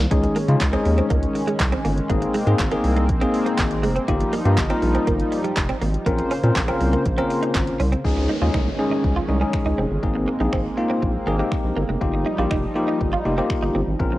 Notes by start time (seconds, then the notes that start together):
0.11 C#2 D#3 G#3 C#4 D#4 G#4, kick, closed hi-hat
0.24 muted clean electric guitar stroke, closed hi-hat
0.36 A#3, open hi-hat
0.48 C#3 G#3 C#4 D#4 F4, closed hi-hat
0.60 C#2, kick, snare, clap, closed hi-hat
0.73 G#3 C4 C#4 D#4 G#4, closed hi-hat
0.85 D#2, muted clean electric guitar stroke, open hi-hat
0.98 C4, closed hi-hat
1.10 C#2 A#3, kick, closed hi-hat
1.23 closed hi-hat
1.35 muted clean electric guitar stroke, open hi-hat
1.48 G#3, closed hi-hat
1.59 C2, muted clean electric guitar stroke, kick, snare, clap, closed hi-hat
1.72 C4, closed hi-hat
1.85 G1 A#3, open hi-hat
1.98 closed hi-hat
2.10 G#1 G#3 A#3 C4 D#4 G#4, kick, closed hi-hat
2.22 muted clean electric guitar stroke, closed hi-hat
2.34 G#3, open hi-hat
2.47 G#2 A#3 C4 D#4 G#4, closed hi-hat
2.58 G#1, kick, snare, clap, closed hi-hat
2.71 A#3 C4 D#4 G#4, closed hi-hat
2.84 C2, muted clean electric guitar stroke, open hi-hat
2.96 A#3, closed hi-hat
3.09 A#1, kick, closed hi-hat
3.21 A#3 C4 D#4 G#4, closed hi-hat
3.34 muted clean electric guitar stroke, open hi-hat
3.46 A#3, closed hi-hat
3.58 G#1, muted clean electric guitar stroke, kick, snare, clap, closed hi-hat
3.71 closed hi-hat
3.83 F1 G#3, open hi-hat
3.96 C4, closed hi-hat
4.08 G1 F3 G3 A#3 D#4 F4 G4, kick, closed hi-hat
4.20 muted clean electric guitar stroke, closed hi-hat
4.33 A#3, open hi-hat
4.45 G2 A#3 D#4 F4 G4, closed hi-hat
4.57 G1, kick, snare, clap, closed hi-hat
4.70 A#3 C4 D#4 F4 A#4, closed hi-hat
4.82 A#1, muted clean electric guitar stroke, open hi-hat
4.95 C4, closed hi-hat
5.07 G1 A#3, kick, closed hi-hat
5.20 closed hi-hat
5.32 muted clean electric guitar stroke, open hi-hat
5.44 G3, closed hi-hat
5.56 F1, muted clean electric guitar stroke, kick, snare, clap, closed hi-hat
5.69 C4, closed hi-hat
5.81 G#1 A#3, open hi-hat
5.94 closed hi-hat
6.06 A#1 C#3 A#3 C4 C#4 F4 A#4 C5, kick, closed hi-hat
6.19 muted clean electric guitar stroke, closed hi-hat
6.31 C#4, open hi-hat
6.43 A#2 C4 C#4 F4 A#4, closed hi-hat
6.55 A#1, kick, snare, clap, closed hi-hat
6.68 C4 C#4 F4 A#4, closed hi-hat
6.81 C2, muted clean electric guitar stroke, open hi-hat
6.93 A#3, closed hi-hat
7.05 A#1, kick, closed hi-hat
7.18 C4 C#4 F4 A#4, closed hi-hat
7.30 muted clean electric guitar stroke, open hi-hat
7.43 D#4, closed hi-hat
7.54 G#1, muted clean electric guitar stroke, kick, snare, clap, closed hi-hat
7.67 closed hi-hat
7.80 C2 C#4, open hi-hat
7.92 C4, closed hi-hat
8.04 C#2 D#3 G#3 C#4 D#4 G#4, kick, downlifter
8.17 muted clean electric guitar stroke
8.29 D#4
8.42 D#2 G#3 C#4 D#4 F4 G#4
8.54 C2 D#4, finger snap, kick
8.79 G#3 C#4 D#4 G#4, muted clean electric guitar stroke
8.91 D#4
9.04 C#2, kick
9.16 F4
9.28 C2 G#3 C#4 D#4 G#4, muted clean electric guitar stroke
9.41 G#3 C#4 D#4 G#4
9.53 finger snap, muted clean electric guitar stroke, kick
9.66 C#2 D#4
9.78 F1 C4
9.91 G1
10.03 G#1 A#3 C4 D#4 G#4, kick
10.15 muted clean electric guitar stroke
10.28 A#3
10.40 A#1 A#3 C4 D#4 G#4
10.53 G#1 C4, finger snap, kick
10.77 A#3 C4 D#4 F4, muted clean electric guitar stroke
10.90 C4
11.02 A#1, muted clean electric guitar stroke, kick
11.27 G#1 A#3 C4 D#4 G#4
11.39 G#3 A#3 C4 D#4 G4
11.52 finger snap, muted clean electric guitar stroke, kick
11.64 A#1
11.76 G1 A#3
11.89 F1 G#3
12.01 G1 F3 G3 A#3 D#4 F4 G4, kick
12.14 muted clean electric guitar stroke
12.26 D#4
12.38 A#1 A#3 D#4 F4 G4
12.51 F1 D#4, finger snap, kick
12.76 A#3 D#4 F4 G4, muted clean electric guitar stroke
12.88 D#4
13.01 G1, kick
13.13 F4
13.25 F1 A#3 D#4 F4 G4, muted clean electric guitar stroke
13.38 A#3 C4 D#4 F4 G4
13.50 finger snap, muted clean electric guitar stroke, kick
13.63 G1 D#4
13.75 G1 C4
13.87 G#1
13.99 A#1 C#3 A#3 C4 C#4 F4 A#4 C5, kick
14.12 muted clean electric guitar stroke